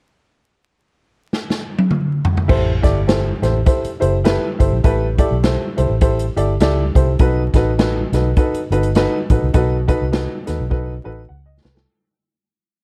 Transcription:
1.33 snare
1.50 snare
1.78 high tom
1.91 mid tom
2.25 floor tom
2.37 floor tom
2.48 fingered electric bass A1, upright piano A2 E4 G4 A4 C5, kick, crash
2.82 fingered electric bass G1, upright piano E4 G4 A4 D5, kick, snare, closed hi-hat
3.07 upright piano E4 G4 A4 C5, snare, closed hi-hat
3.42 fingered electric bass A1, upright piano E4 G4 A4 C5, snare, closed hi-hat
3.66 upright piano E4 G4 A4 C5, kick, closed hi-hat
3.85 muted fingered electric bass stroke, closed hi-hat
4.00 fingered electric bass F#1, upright piano E4 G4 A4 C5, closed hi-hat
4.24 upright piano E4 G4 A4 B4, snare, closed hi-hat
4.59 fingered electric bass G1, upright piano E4 G4 A4 C5, kick, closed hi-hat
4.72 fingered electric bass A#1
4.84 fingered electric bass A1, upright piano A2 E4 G4 A4 B4, kick, closed hi-hat
5.18 upright piano E4 G4 A4 D5, kick, closed hi-hat
5.31 fingered electric bass B1
5.43 upright piano E4 G4 A4 C5, snare, closed hi-hat
5.77 fingered electric bass C2, upright piano E4 G4 A4 C5, closed hi-hat
5.90 fingered electric bass A1
6.01 upright piano E4 G4 A4 C5, kick, closed hi-hat
6.19 closed hi-hat
6.36 fingered electric bass G1, upright piano E4 G4 A4 D5, closed hi-hat
6.60 fingered electric bass C#2, upright piano E4 G4 A4 D5, snare, closed hi-hat
6.95 fingered electric bass C2, upright piano E4 G4 A4 C5, kick, closed hi-hat
7.19 fingered electric bass B1, upright piano B2 D#4 F#4 A4 B4, kick, closed hi-hat
7.54 fingered electric bass A1, upright piano D#4 F#4 A4 B4, kick, snare, closed hi-hat
7.78 upright piano D#4 F#4 A4 B4, snare, closed hi-hat
8.12 fingered electric bass B1, upright piano D#4 F#4 A4 B4, snare, closed hi-hat
8.37 upright piano D#4 F#4 A4 B4, kick, closed hi-hat
8.54 muted fingered electric bass stroke, closed hi-hat
8.70 fingered electric bass G1, upright piano D#4 F#4 A4 B4, closed hi-hat
8.83 closed hi-hat
8.95 upright piano D#4 F#4 A4 B4, snare, closed hi-hat
9.30 fingered electric bass A1, upright piano D#4 F#4 A4 B4, kick, closed hi-hat
9.42 fingered electric bass C2
9.53 fingered electric bass B1, upright piano B2 D#4 F#4 A4 B4, kick, closed hi-hat
9.88 upright piano D#4 F#4 A4 B4, kick, closed hi-hat
10.02 fingered electric bass C2
10.12 upright piano D#4 F#4 A4 B4, snare, closed hi-hat
10.46 fingered electric bass D#2, upright piano D#4 F#4 A4 B4, snare, closed hi-hat
10.60 fingered electric bass B1
10.70 upright piano D#4 F#4 A4 B4, kick
11.04 fingered electric bass A1, upright piano D#4 F#4 A4 B4
11.29 fingered electric bass C#2, upright piano F#5
11.46 upright piano D#5
11.63 fingered electric bass C2, upright piano B4, snare
11.75 upright piano A4, snare

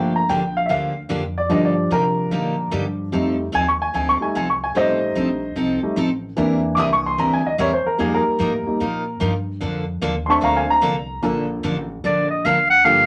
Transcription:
Already playing: upright bass G1, steel-string acoustic guitar D3 F3 A#3 D4 G4, upright piano F3 A3 A#3 G5
0.16 upright piano A#5
0.29 upright bass A#1, steel-string acoustic guitar D3 F3 A#3 D4 G4, upright piano G5
0.57 upright piano F5
0.66 upright bass D2, steel-string acoustic guitar D3 F3, upright piano E5
0.70 steel-string acoustic guitar A#3 D4 G4, upright piano F5
1.09 upright bass F2, steel-string acoustic guitar D3 F3 A#3 D4 G4
1.38 upright piano D5
1.49 upright bass G2, steel-string acoustic guitar D3 G3 A#3 D#4 G4, upright piano F3 G3 D4 D#5
1.65 upright piano D5
1.90 upright bass C3, steel-string acoustic guitar D3 G3 A#3 D#4 G4, upright piano A#4
2.31 upright bass A#2, steel-string acoustic guitar D3 G3 A#3 D#4 G4
2.71 upright bass G2, steel-string acoustic guitar D3 G3 A#3 D#4 G4
3.12 upright bass F2, steel-string acoustic guitar F3 C4 D#4 A4, upright piano G3 A3 D#4
3.52 upright bass D#2, steel-string acoustic guitar F3 C4 D#4 A4, upright piano G#5
3.68 upright piano C#6
3.82 upright piano G#5
3.94 upright bass D2, steel-string acoustic guitar F3 C4 D#4 A4, upright piano G#5
4.09 upright piano C#6
4.20 upright piano G3 A3 D#4 G#5, muted upright bass stroke
4.35 upright bass C2, steel-string acoustic guitar F3 C4 D#4 A4, upright piano G#5
4.50 upright piano C#6
4.64 upright piano G#5
4.75 upright bass A1, steel-string acoustic guitar F3 C4 D#4 A4, upright piano G3 A3 D#4 C5 D#5
5.15 upright bass A#1, steel-string acoustic guitar F3 C4 D#4 A4
5.56 upright bass C2, steel-string acoustic guitar F3 C4 D#4 A4
5.83 upright piano G3 A3 D#4, muted upright bass stroke
5.96 upright bass A1, steel-string acoustic guitar F3 C4 D#4 A4
6.37 upright bass E2, steel-string acoustic guitar E3 G3 C4 E4 A#4, upright piano E3 A#3 D4
6.75 upright bass C2, steel-string acoustic guitar E3 G3 C4 E4 A#4, upright piano D6
6.80 upright piano D#6
6.93 upright piano C#6
7.06 upright piano C6
7.18 upright bass D2, steel-string acoustic guitar E3 G3 C4 E4 A#4, upright piano A#5
7.33 upright piano G#5
7.47 upright piano D#5
7.58 upright bass E2, steel-string acoustic guitar E3 G3 C4 E4 A#4, upright piano C#5
7.73 upright piano C5
7.86 upright piano A#4, muted upright bass stroke
7.98 upright bass F2, steel-string acoustic guitar F3 A#3 D#4 F4 A#4, upright piano G3 A#3 D#4 G#4
8.14 upright piano A#4
8.26 muted upright bass stroke
8.39 upright bass A2, steel-string acoustic guitar F3 A#3 D#4 F4 A#4
8.66 upright piano G3 A#3 D#4, muted upright bass stroke
8.80 upright bass A#2, steel-string acoustic guitar F3 A#3 D#4 F4 A#4
9.20 upright bass G2, steel-string acoustic guitar F3 A#3 D#4 F4 A#4
9.61 upright bass F2, steel-string acoustic guitar D3 F3 A#3 D4 A4
10.02 upright bass D#2, steel-string acoustic guitar D3 F3 A#3 D4 A4
10.26 upright piano A3 C4 D4 A5 C6
10.30 upright piano C#6
10.41 upright bass D2, steel-string acoustic guitar D3 F3 A#3 D4 A4, upright piano F5 A#5
10.56 upright piano F5 G#5
10.70 upright piano A#5
10.81 upright bass C2, steel-string acoustic guitar D3 F3 A#3 D4 A4
11.22 upright bass A#1, steel-string acoustic guitar D3 F3 A#3 D4 A4, upright piano A#3 D4 F4 A4 A#4
11.63 upright bass A1, steel-string acoustic guitar D3 F3 A#3 D4 A4
12.04 upright bass A#1, steel-string acoustic guitar D3 F3 A#3 D4 A4, clarinet D5
12.30 clarinet D#5
12.45 upright bass D2, steel-string acoustic guitar D3 F3 A#3 D4 A4, clarinet F5
12.70 clarinet F#5
12.84 upright bass G2, steel-string acoustic guitar D3 F3 A#3 D4 G4, upright piano A#3 D4 F4 G4 A4, clarinet F5

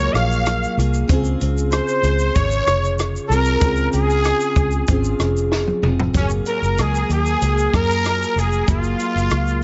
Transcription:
Already playing: steel-string acoustic guitar F#3 A#3 F4 G#4, trumpet C#5
0.13 fingered electric bass A#1, trumpet F5, cross-stick, closed hi-hat, shaker
0.32 shaker
0.46 cross-stick, closed hi-hat, shaker
0.64 shaker
0.77 fingered electric bass C2, steel-string acoustic guitar A#3 F4 G#4, closed hi-hat, shaker
0.94 shaker
1.07 fingered electric bass C#2, steel-string acoustic guitar C#3 C4, kick, closed hi-hat, shaker
1.12 steel-string acoustic guitar F4 G#4
1.24 shaker
1.41 fingered electric bass C#2, closed hi-hat, shaker
1.58 shaker
1.71 trumpet C5, cross-stick, closed hi-hat, shaker
1.88 shaker
2.03 fingered electric bass C#2, closed hi-hat, shaker
2.19 shaker
2.35 fingered electric bass G#1, steel-string acoustic guitar C#3 F4 G#4, trumpet C#5, kick, closed hi-hat, shaker
2.51 shaker
2.67 fingered electric bass F1, cross-stick, closed hi-hat, shaker
2.84 shaker
2.99 cross-stick, closed hi-hat, shaker
3.16 shaker
3.28 fingered electric bass C2, steel-string acoustic guitar F4 G#4, trumpet A#4, closed hi-hat, shaker
3.33 steel-string acoustic guitar C4
3.45 shaker
3.59 fingered electric bass C#2, steel-string acoustic guitar C#3 C4, kick, closed hi-hat, shaker
3.64 steel-string acoustic guitar F4 G#4
3.76 shaker
3.93 fingered electric bass C#2, trumpet G#4, closed hi-hat, shaker
4.10 shaker
4.25 cross-stick, closed hi-hat, shaker
4.40 shaker
4.56 fingered electric bass C#2, kick, closed hi-hat, shaker
4.71 shaker
4.88 fingered electric bass G#1, steel-string acoustic guitar C#3 C4 F4, kick, closed hi-hat, shaker
4.92 steel-string acoustic guitar G#4
5.04 shaker
5.19 fingered electric bass F1, cross-stick, closed hi-hat, shaker
5.37 shaker
5.52 snare
5.67 high tom
5.82 fingered electric bass F1, steel-string acoustic guitar C4 F4 G#4, mid tom
6.00 floor tom
6.13 fingered electric bass F#1, steel-string acoustic guitar F#3 A#3, trumpet C#4, kick, closed hi-hat, shaker
6.18 steel-string acoustic guitar F4 G#4
6.30 shaker
6.46 trumpet A#4, closed hi-hat, shaker
6.62 fingered electric bass F#1, shaker
6.78 fingered electric bass C#2, trumpet G#4, cross-stick, closed hi-hat, shaker
6.95 shaker
7.09 fingered electric bass D#2, trumpet G#4, closed hi-hat, shaker
7.26 shaker
7.40 fingered electric bass C#2, steel-string acoustic guitar F#3 A#3 F4, closed hi-hat, shaker
7.44 steel-string acoustic guitar G#4
7.58 shaker
7.74 fingered electric bass F#2, trumpet A#4, kick, cross-stick, closed hi-hat, shaker
7.91 shaker
8.03 steel-string acoustic guitar F#3 A#3 F4 G#4, cross-stick, closed hi-hat, shaker
8.23 shaker
8.36 fingered electric bass F1, trumpet G#4, closed hi-hat, shaker
8.52 shaker
8.66 fingered electric bass F#1, steel-string acoustic guitar F#3 A#3, trumpet F4, kick, closed hi-hat, shaker
8.73 steel-string acoustic guitar G#4
8.84 shaker
9.00 closed hi-hat, shaker
9.15 fingered electric bass F#1, shaker
9.31 fingered electric bass C#2, cross-stick, closed hi-hat, shaker
9.47 shaker

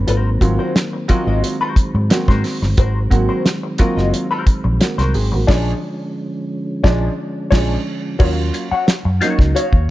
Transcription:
Already playing: tonewheel organ D#3 F#3 A#3 C4
0.07 fingered electric bass G#1, hollow-body jazz guitar F#4 A#4 C5, closed hi-hat
0.41 fingered electric bass G#1, upright piano F#3 A#3 C4 F4, muted hollow-body jazz guitar stroke, kick, closed hi-hat
0.59 hollow-body jazz guitar F#4 A#4 C5
0.76 muted hollow-body jazz guitar stroke, snare, closed hi-hat
0.93 muted hollow-body jazz guitar stroke
1.08 upright piano F#3 A#3 C4 F4, hollow-body jazz guitar F#4 A#4 D#5, muted fingered electric bass stroke, kick, closed hi-hat
1.27 fingered electric bass G#1, hollow-body jazz guitar F#4 A#4 D#5
1.43 tonewheel organ G#3, muted hollow-body jazz guitar stroke, closed hi-hat
1.61 hollow-body jazz guitar F#4 A#4 C5
1.76 muted fingered electric bass stroke, muted hollow-body jazz guitar stroke, kick, closed hi-hat
1.95 fingered electric bass G#2, muted hollow-body jazz guitar stroke
2.10 upright piano F#3 A#3 C4 F#4, muted hollow-body jazz guitar stroke, snare, closed hi-hat
2.28 fingered electric bass G#2, hollow-body jazz guitar F#4 A#4 C5, kick, snare
2.44 muted hollow-body jazz guitar stroke, snare, open hi-hat
2.62 fingered electric bass G1, muted hollow-body jazz guitar stroke, snare
2.77 fingered electric bass G#1, hollow-body jazz guitar F#4 A#4 C5, kick, closed hi-hat
3.10 fingered electric bass G#1, upright piano F#3 A#3 C4 F#4, muted hollow-body jazz guitar stroke, kick, closed hi-hat
3.29 hollow-body jazz guitar F#4 A#4 C5
3.45 muted hollow-body jazz guitar stroke, snare, closed hi-hat
3.63 muted hollow-body jazz guitar stroke
3.78 upright piano F#3 A#3 C4 F4, hollow-body jazz guitar F#4 A#4 D#5, muted fingered electric bass stroke, kick, snare, closed hi-hat
3.97 fingered electric bass F#1, hollow-body jazz guitar F#4 A#4 D#5, snare
4.13 muted hollow-body jazz guitar stroke, closed hi-hat
4.31 hollow-body jazz guitar F#4 A#4 C5
4.46 muted hollow-body jazz guitar stroke, muted fingered electric bass stroke, kick, closed hi-hat
4.64 fingered electric bass A#1, muted hollow-body jazz guitar stroke
4.80 upright piano A#3 F#4, muted hollow-body jazz guitar stroke, snare, closed hi-hat
4.98 fingered electric bass C2, hollow-body jazz guitar F#4 A#4 C5, upright piano A#4, snare, closed hi-hat
5.14 fingered electric bass G#1, upright piano C4 G#4, muted hollow-body jazz guitar stroke, open hi-hat
5.32 fingered electric bass A1, upright piano A#3 F#4, muted hollow-body jazz guitar stroke
5.47 fingered electric bass A#1, tonewheel organ D3 F3 C#4, upright piano F3 G#3 C#4 D4, hollow-body jazz guitar D4 G#4 C#5, kick, snare, crash
6.84 fingered electric bass A#1, upright piano F3 G#3 C#4 D4, hollow-body jazz guitar D4 G#4 D5, kick, snare
7.51 fingered electric bass A#1, upright piano F3 G#3 C#4 D4, hollow-body jazz guitar D4 G#4 C#5, kick, snare, crash
8.19 fingered electric bass D#2, upright piano F#3 A#3 C#4 F4, hollow-body jazz guitar F#4 C#5 F5, kick, crash
8.54 muted hollow-body jazz guitar stroke, closed hi-hat
8.71 hollow-body jazz guitar F#4 C#5 F#5, muted fingered electric bass stroke
8.87 muted hollow-body jazz guitar stroke, snare, closed hi-hat
9.05 fingered electric bass F#2, muted hollow-body jazz guitar stroke
9.21 upright piano F#3 A#3 C#4 D#4, hollow-body jazz guitar F#4 C#5 F#5, snare, closed hi-hat
9.39 fingered electric bass C#2, muted hollow-body jazz guitar stroke, kick, snare
9.55 hollow-body jazz guitar F#4 C#5 F5, closed hi-hat
9.73 fingered electric bass D#2, kick

